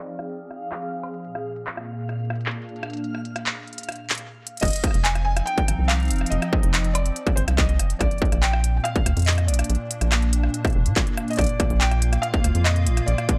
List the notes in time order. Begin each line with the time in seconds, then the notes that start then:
Already playing: F3 C4 D#4 G#4 D5 F5
0.08 closed hi-hat
0.19 cross-stick
0.29 closed hi-hat
0.51 cross-stick, closed hi-hat
0.72 cross-stick, clap
0.82 closed hi-hat
0.93 closed hi-hat
1.03 cross-stick
1.14 closed hi-hat
1.25 A#2, closed hi-hat
1.35 cross-stick
1.49 A#3
1.56 closed hi-hat
1.67 cross-stick, clap, closed hi-hat
1.77 cross-stick
2.09 cross-stick, closed hi-hat
2.14 D4
2.20 closed hi-hat
2.25 closed hi-hat
2.30 cross-stick, closed hi-hat
2.35 closed hi-hat
2.41 closed hi-hat
2.46 clap
2.51 closed hi-hat
2.62 closed hi-hat
2.69 closed hi-hat
2.76 closed hi-hat
2.83 cross-stick, closed hi-hat
2.90 closed hi-hat
2.93 closed hi-hat
2.97 closed hi-hat
3.04 closed hi-hat
3.15 cross-stick
3.25 closed hi-hat
3.36 cross-stick, closed hi-hat
3.46 clap, closed hi-hat
3.67 closed hi-hat
3.73 closed hi-hat
3.78 closed hi-hat
3.83 closed hi-hat
3.89 cross-stick, closed hi-hat
3.92 closed hi-hat
3.96 closed hi-hat
4.10 clap, closed hi-hat
4.12 closed hi-hat
4.15 closed hi-hat
4.18 closed hi-hat
4.47 closed hi-hat
4.57 closed hi-hat
4.60 F1 D#5, kick, cross-stick, closed hi-hat
4.63 F3, closed hi-hat, crash
4.65 closed hi-hat
4.68 closed hi-hat
4.70 closed hi-hat
4.73 closed hi-hat
4.76 closed hi-hat
4.84 kick, cross-stick, closed hi-hat
4.87 cross-stick
4.91 F1, cross-stick, closed hi-hat
5.03 C4 G#5, clap, closed hi-hat
5.15 cross-stick, closed hi-hat
5.23 D#4 G#5
5.37 cross-stick, closed hi-hat
5.46 G5, closed hi-hat
5.58 kick, closed hi-hat
5.68 G#1, cross-stick, closed hi-hat
5.79 C2
5.88 F5, clap, closed hi-hat
6.00 closed hi-hat
6.03 closed hi-hat
6.05 closed hi-hat
6.08 F1, closed hi-hat
6.11 closed hi-hat
6.13 closed hi-hat
6.16 closed hi-hat
6.18 cross-stick, closed hi-hat
6.26 D#5, closed hi-hat
6.32 F1, closed hi-hat
6.42 cross-stick, closed hi-hat
6.53 kick
6.63 F1, closed hi-hat
6.74 cross-stick, clap, closed hi-hat
6.84 closed hi-hat
6.93 D5, cross-stick, closed hi-hat
7.06 closed hi-hat
7.16 closed hi-hat
7.27 kick, cross-stick, closed hi-hat
7.36 G#1 C5, closed hi-hat
7.48 C2, cross-stick, closed hi-hat
7.57 D#5, kick, clap, closed hi-hat
7.69 closed hi-hat
7.79 F1, cross-stick, closed hi-hat
7.90 closed hi-hat
7.99 A#1 A#2 D5, kick, cross-stick, closed hi-hat
8.11 closed hi-hat
8.18 kick, closed hi-hat
8.25 closed hi-hat
8.32 A#1, cross-stick, closed hi-hat
8.41 G5, clap, closed hi-hat
8.49 A#3
8.53 cross-stick
8.64 closed hi-hat
8.77 G5
8.84 F5, cross-stick, closed hi-hat
8.95 D4, kick, closed hi-hat
9.06 D2, cross-stick, closed hi-hat
9.17 F2, closed hi-hat
9.19 closed hi-hat
9.22 closed hi-hat
9.25 D#5, clap, closed hi-hat
9.27 closed hi-hat
9.33 closed hi-hat
9.35 cross-stick, closed hi-hat
9.38 closed hi-hat
9.47 A#1 D5, closed hi-hat
9.54 closed hi-hat
9.59 cross-stick, closed hi-hat
9.64 closed hi-hat
9.70 A#1, closed hi-hat
9.75 closed hi-hat
9.91 closed hi-hat
10.01 A#1, cross-stick, closed hi-hat
10.12 cross-stick, clap, closed hi-hat
10.22 closed hi-hat
10.33 closed hi-hat
10.44 cross-stick
10.54 closed hi-hat
10.65 kick, cross-stick, closed hi-hat
10.67 closed hi-hat
10.70 closed hi-hat
10.73 F1, closed hi-hat
10.86 A#2, closed hi-hat
10.96 kick, cross-stick, clap, closed hi-hat
11.07 closed hi-hat
11.17 cross-stick, closed hi-hat
11.28 D#5, closed hi-hat
11.31 closed hi-hat
11.33 closed hi-hat
11.36 D5, cross-stick, closed hi-hat
11.39 A#1, kick, closed hi-hat
11.41 closed hi-hat
11.44 closed hi-hat
11.47 closed hi-hat
11.60 kick, cross-stick, closed hi-hat
11.69 A#1 F5, closed hi-hat
11.80 G5, clap, closed hi-hat
11.91 cross-stick, closed hi-hat
12.02 F4, closed hi-hat
12.13 cross-stick, closed hi-hat
12.22 F5, closed hi-hat
12.34 kick, closed hi-hat
12.44 D2, cross-stick, closed hi-hat
12.55 F2, closed hi-hat
12.64 D#5, cross-stick, clap, closed hi-hat
12.76 closed hi-hat
12.87 A#1, closed hi-hat
12.97 cross-stick, closed hi-hat
13.06 A#1 D5, closed hi-hat
13.18 cross-stick, closed hi-hat
13.29 kick, closed hi-hat